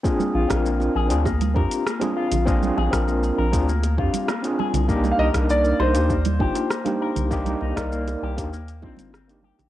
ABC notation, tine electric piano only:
X:1
M:4/4
L:1/16
Q:1/4=99
K:Bbmix
V:1 name="Tine electric piano"
[CDFA]3 [CDFB]4 [CDFA] z2 [CDFG]2 z [CDFA]3 | [CDFA]3 [CDFB]4 [CDFA] z2 [CDFG]2 z [CDFA]3 | [B,DEG]3 [B,DEB]4 [B,DEG] z2 [B,DEF]2 z [B,DEG]3 | [B,DEG]3 [B,EBd]4 [B,DEG] z2 [B,DEF]2 z [B,DEG]3 |]